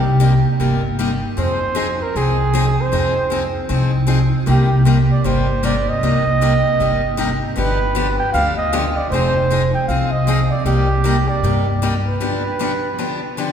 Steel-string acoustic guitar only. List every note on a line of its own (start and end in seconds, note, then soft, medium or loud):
0.20 0.32 C3 medium
0.20 0.32 G3 medium
0.20 0.32 A#3 medium
0.20 0.32 D#4 medium
0.20 0.32 G4 medium
0.60 0.81 C3 medium
0.60 0.81 G3 medium
0.60 0.81 A#3 medium
0.60 0.81 D#4 medium
0.60 0.81 G4 medium
0.99 1.10 C3 medium
0.99 1.10 G3 medium
0.99 1.10 A#3 medium
0.99 1.10 D#4 medium
0.99 1.10 G4 medium
1.37 1.58 F3 medium
1.37 1.58 C4 medium
1.37 1.59 D#4 medium
1.37 1.59 G#4 medium
1.75 1.86 F3 medium
1.75 1.86 C4 medium
1.75 1.87 D#4 medium
1.75 1.87 G#4 medium
2.16 2.36 F3 medium
2.16 2.36 C4 medium
2.16 2.37 D#4 medium
2.16 2.37 G#4 medium
2.54 2.64 F3 medium
2.54 2.65 C4 medium
2.54 2.65 D#4 medium
2.54 2.65 G#4 medium
2.92 3.13 F3 medium
2.92 3.13 C4 medium
2.92 3.13 D#4 medium
2.92 3.14 G#4 medium
3.30 3.41 F3 medium
3.30 3.42 C4 medium
3.30 3.42 D#4 medium
3.30 3.42 G#4 medium
3.69 3.90 F3 medium
3.69 3.90 C4 medium
3.69 3.91 D#4 medium
3.69 3.91 G#4 medium
4.07 4.18 F3 medium
4.07 4.19 C4 medium
4.07 4.19 D#4 medium
4.07 4.19 G#4 medium
4.46 4.68 C3 medium
4.46 4.68 G3 medium
4.46 4.68 A#3 medium
4.46 4.68 D#4 medium
4.46 4.68 G4 medium
4.85 4.96 C3 medium
4.85 4.97 G3 medium
4.85 4.97 A#3 medium
4.85 4.97 D#4 medium
4.85 4.97 G4 medium
5.24 5.45 C3 medium
5.24 5.45 G3 medium
5.24 5.46 A#3 medium
5.24 5.46 D#4 medium
5.24 5.46 G4 medium
5.63 5.74 C3 medium
5.63 5.74 G3 medium
5.63 5.74 A#3 medium
5.63 5.74 D#4 medium
5.63 5.75 G4 medium
6.03 6.23 C3 medium
6.03 6.24 G3 medium
6.03 6.23 A#3 medium
6.03 6.24 D#4 medium
6.03 6.24 G4 medium
6.41 6.52 C3 medium
6.41 6.52 G3 medium
6.41 6.52 A#3 medium
6.41 6.52 D#4 medium
6.41 6.52 G4 medium
6.80 7.01 C3 medium
6.80 7.01 G3 medium
6.80 7.01 A#3 medium
6.80 7.01 D#4 medium
6.80 7.01 G4 medium
7.17 7.29 C3 medium
7.17 7.29 G3 medium
7.17 7.29 A#3 medium
7.17 7.29 D#4 medium
7.17 7.29 G4 medium
7.56 7.77 D3 medium
7.56 7.77 F3 medium
7.56 7.78 B3 medium
7.56 7.78 D4 medium
7.56 7.78 G4 medium
7.95 8.06 D3 medium
7.95 8.06 F3 medium
7.95 8.07 B3 medium
7.95 8.07 D4 medium
7.95 8.07 G4 medium
8.34 8.55 D3 medium
8.34 8.55 F3 medium
8.34 8.55 B3 medium
8.34 8.55 D4 medium
8.34 8.56 G4 medium
8.73 8.84 D3 medium
8.73 8.84 F3 medium
8.73 8.84 B3 medium
8.73 8.84 D4 medium
8.73 8.84 G4 medium
9.12 9.32 F3 medium
9.12 9.33 C4 medium
9.12 9.33 D#4 medium
9.12 9.33 G#4 medium
9.50 9.61 F3 medium
9.50 9.61 C4 medium
9.50 9.62 D#4 medium
9.50 9.62 G#4 medium
9.89 10.10 F3 medium
9.89 10.10 C4 medium
9.89 10.10 D#4 medium
9.89 10.11 G#4 medium
10.27 10.38 F3 medium
10.27 10.38 C4 medium
10.27 10.39 D#4 medium
10.27 10.39 G#4 medium
10.66 10.87 C3 medium
10.66 10.87 G3 medium
10.66 10.87 A#3 medium
10.66 10.87 D#4 medium
10.66 10.87 G4 medium
11.04 11.15 C3 medium
11.04 11.15 G3 medium
11.04 11.16 A#3 medium
11.04 11.16 D#4 medium
11.04 11.16 G4 medium
11.44 11.64 C3 medium
11.44 11.65 G3 medium
11.44 11.65 A#3 medium
11.44 11.65 D#4 medium
11.44 11.65 G4 medium
11.82 11.93 C3 medium
11.82 11.93 G3 medium
11.82 11.93 A#3 medium
11.82 11.94 D#4 medium
11.82 11.94 G4 medium
12.20 12.41 D3 medium
12.20 12.42 F3 medium
12.20 12.42 B3 medium
12.20 12.42 D4 medium
12.20 12.42 G4 medium
12.59 12.70 D3 medium
12.59 12.70 F3 medium
12.59 12.71 B3 medium
12.59 12.71 D4 medium
12.59 12.71 G4 medium
12.98 13.19 D3 medium
12.98 13.19 F3 medium
12.98 13.19 B3 medium
12.98 13.20 D4 medium
12.98 13.20 G4 medium
13.37 13.48 D3 medium
13.37 13.48 F3 medium
13.37 13.48 B3 medium
13.37 13.49 D4 medium
13.37 13.48 G4 medium